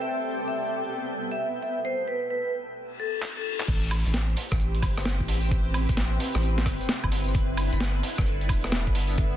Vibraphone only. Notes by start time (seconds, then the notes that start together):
0.02 E5
0.48 E5
1.32 E5
1.62 E5
1.85 C5
2.08 B4
2.30 B4
3.00 A4
3.37 A4